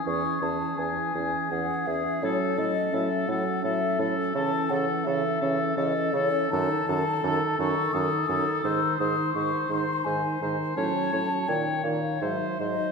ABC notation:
X:1
M:3/4
L:1/8
Q:1/4=84
K:Alyd
V:1 name="Flute"
c' a g2 f e | c d e f e z | a f e2 d c | a3 c' d'2 |
e' d' c' ^b g z | a2 =g ^e =e d |]
V:2 name="Oboe"
G G G G G G | A A A A A A | A A A A A A | A A A A A A |
^B B B B B B | c c c c ^B B |]
V:3 name="Clarinet"
C C C C C C | C C C C C C | C C C C C C | D D D D D D |
D D D D D D | C C D D D D |]
V:4 name="French horn" clef=bass
E, E, E, E, E, E, | F, F, F, F, F, F, | E, E, E, E, E, E, | D, D, D, D, D, D, |
D, D, D, D, D, D, | F, F, D, D, F, F, |]
V:5 name="Bassoon" clef=bass
E,, E,, E,, E,, E,, E,, | A,, A,, A,, A,, A,, A,, | C, C, C, C, C, C, | F,, F,, F,, F,, F,, F,, |
G,, G,, G,, G,, G,, G,, | A,, A,, ^A,, A,, G,, G,, |]